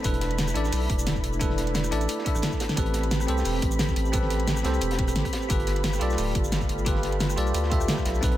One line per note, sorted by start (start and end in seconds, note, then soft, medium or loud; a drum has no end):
0.03 0.54 E1 loud
0.03 5.46 A3 medium
0.03 0.53 D4 medium
0.03 2.74 D4 medium
0.03 0.53 E4 medium
0.03 2.74 E4 medium
0.03 0.54 A4 medium
0.03 0.54 B4 loud
0.03 8.19 B5 medium
0.03 kick loud
0.03 closed hi-hat medium
0.03 shaker soft
0.14 closed hi-hat soft
0.21 snare soft
0.21 closed hi-hat medium
0.31 closed hi-hat soft
0.38 snare loud
0.38 closed hi-hat medium
0.38 shaker medium
0.48 cross-stick soft
0.48 shaker medium
0.54 0.71 A1 medium
0.54 1.38 D4 medium
0.54 1.39 E4 medium
0.54 1.39 A4 medium
0.54 1.40 D5 loud
0.54 closed hi-hat medium
0.64 snare soft
0.64 shaker soft
0.73 0.88 B1 loud
0.73 cross-stick soft
0.73 closed hi-hat medium
0.73 open hi-hat medium
0.73 shaker soft
0.90 1.23 E1 medium
0.90 kick loud
0.90 closed hi-hat medium
0.99 shaker medium
1.07 snare loud
1.07 closed hi-hat medium
1.07 shaker soft
1.16 kick medium
1.16 shaker soft
1.24 1.91 E1 medium
1.24 closed hi-hat medium
1.33 shaker soft
1.39 1.89 D4 medium
1.39 1.90 E4 medium
1.39 1.90 A4 medium
1.39 1.91 B4 loud
1.39 kick loud
1.39 closed hi-hat medium
1.39 shaker soft
1.50 snare soft
1.58 snare soft
1.58 closed hi-hat medium
1.67 closed hi-hat soft
1.75 snare loud
1.75 closed hi-hat medium
1.75 shaker soft
1.84 cross-stick soft
1.84 closed hi-hat soft
1.84 shaker medium
1.91 2.07 A1 medium
1.91 2.24 D4 medium
1.91 2.24 E4 medium
1.91 2.25 A4 medium
1.91 2.25 D5 loud
1.91 closed hi-hat medium
2.01 closed hi-hat soft
2.01 shaker soft
2.09 closed hi-hat loud
2.09 closed hi-hat medium
2.09 shaker soft
2.19 snare soft
2.25 2.75 D4 medium
2.25 2.75 E4 medium
2.25 2.76 A4 medium
2.25 2.76 E5 loud
2.25 kick loud
2.25 closed hi-hat medium
2.35 2.42 A1 loud
2.35 cross-stick soft
2.35 shaker medium
2.42 snare loud
2.42 closed hi-hat medium
2.42 shaker soft
2.52 kick medium
2.52 shaker soft
2.60 snare loud
2.60 closed hi-hat medium
2.60 shaker soft
2.69 snare medium
2.69 closed hi-hat soft
2.69 shaker soft
2.76 3.27 A1 loud
2.76 3.26 C4 medium
2.76 5.47 C4 medium
2.76 3.26 G4 medium
2.76 8.19 G4 medium
2.76 3.27 A4 medium
2.76 3.27 B4 loud
2.76 kick loud
2.76 closed hi-hat medium
2.76 shaker soft
2.86 closed hi-hat soft
2.94 snare medium
2.94 closed hi-hat medium
3.03 closed hi-hat soft
3.11 snare loud
3.11 closed hi-hat medium
3.11 shaker soft
3.20 cross-stick soft
3.20 shaker medium
3.27 3.44 C2 medium
3.27 4.11 C4 medium
3.27 4.11 G4 medium
3.27 4.12 A4 medium
3.27 4.12 C5 loud
3.27 closed hi-hat medium
3.38 snare soft
3.38 shaker soft
3.45 3.61 E1 medium
3.45 cross-stick soft
3.45 closed hi-hat medium
3.45 open hi-hat medium
3.45 shaker soft
3.62 3.95 A1 medium
3.62 kick loud
3.62 closed hi-hat medium
3.71 shaker medium
3.79 snare loud
3.79 closed hi-hat loud
3.79 closed hi-hat medium
3.79 shaker soft
3.88 kick medium
3.88 shaker soft
3.96 4.63 A1 medium
3.96 closed hi-hat medium
4.06 shaker soft
4.12 4.62 C4 medium
4.12 4.63 G4 medium
4.12 4.63 A4 medium
4.12 4.64 B4 loud
4.12 kick loud
4.12 closed hi-hat medium
4.12 shaker soft
4.23 snare soft
4.30 snare soft
4.30 closed hi-hat medium
4.40 closed hi-hat soft
4.48 snare loud
4.48 closed hi-hat medium
4.48 shaker soft
4.57 cross-stick soft
4.57 shaker medium
4.63 4.80 C2 loud
4.63 5.47 C4 medium
4.63 5.48 G4 medium
4.63 5.48 A4 medium
4.63 5.49 C5 loud
4.63 snare loud
4.63 closed hi-hat medium
4.74 shaker soft
4.81 5.15 E1 medium
4.81 closed hi-hat medium
4.81 shaker soft
4.91 snare medium
4.91 closed hi-hat medium
4.99 kick loud
4.99 closed hi-hat medium
5.08 cross-stick soft
5.08 closed hi-hat medium
5.08 shaker medium
5.16 5.24 A1 medium
5.16 snare loud
5.16 closed hi-hat medium
5.16 shaker soft
5.25 kick medium
5.25 cross-stick soft
5.25 closed hi-hat medium
5.25 shaker soft
5.33 snare loud
5.33 closed hi-hat medium
5.42 shaker soft
5.49 6.00 G1 loud
5.49 8.37 A3 medium
5.49 5.99 F4 medium
5.49 8.20 F4 medium
5.49 5.99 G4 medium
5.49 5.99 A4 medium
5.49 6.00 B4 loud
5.49 kick loud
5.49 closed hi-hat medium
5.49 shaker soft
5.60 closed hi-hat soft
5.67 snare medium
5.67 closed hi-hat medium
5.76 closed hi-hat soft
5.84 snare loud
5.84 closed hi-hat medium
5.84 shaker soft
5.93 cross-stick soft
5.93 shaker medium
6.00 6.16 B1 loud
6.00 6.84 F4 medium
6.00 6.84 G4 medium
6.00 6.85 A4 medium
6.00 6.85 D5 loud
6.00 closed hi-hat medium
6.10 snare soft
6.10 shaker soft
6.18 6.34 D1 loud
6.18 cross-stick soft
6.18 closed hi-hat medium
6.18 open hi-hat medium
6.18 shaker soft
6.35 6.68 G1 medium
6.35 kick loud
6.35 closed hi-hat medium
6.44 shaker medium
6.52 snare loud
6.52 closed hi-hat medium
6.52 shaker soft
6.61 kick medium
6.61 shaker soft
6.69 7.36 G1 medium
6.69 closed hi-hat medium
6.78 shaker soft
6.85 7.35 F4 medium
6.85 7.35 G4 medium
6.85 7.36 A4 medium
6.85 7.36 B4 loud
6.85 kick loud
6.85 closed hi-hat medium
6.85 shaker soft
6.95 snare soft
7.03 snare soft
7.03 closed hi-hat medium
7.12 closed hi-hat soft
7.20 snare loud
7.20 closed hi-hat medium
7.20 shaker soft
7.30 cross-stick soft
7.30 shaker medium
7.37 7.53 B1 medium
7.37 7.69 F4 medium
7.37 7.70 G4 medium
7.37 7.70 A4 medium
7.37 7.70 D5 loud
7.37 closed hi-hat medium
7.47 shaker soft
7.54 7.87 D2 medium
7.54 closed hi-hat medium
7.54 shaker soft
7.63 snare soft
7.70 8.20 F4 medium
7.70 8.20 G4 medium
7.70 8.21 A4 medium
7.70 8.21 E5 loud
7.70 kick loud
7.70 closed hi-hat medium
7.81 cross-stick soft
7.81 shaker medium
7.88 snare loud
7.88 closed hi-hat medium
7.88 shaker soft
7.98 kick medium
7.98 cross-stick soft
7.98 shaker soft
8.05 8.21 B1 medium
8.05 snare medium
8.05 closed hi-hat medium
8.15 shaker soft
8.21 8.37 B1 loud
8.21 8.37 C4 medium
8.21 8.37 D#4 medium
8.21 8.37 A4 medium
8.21 8.37 B4 loud
8.21 8.37 B5 medium
8.21 kick loud
8.21 closed hi-hat medium
8.21 shaker soft
8.32 closed hi-hat soft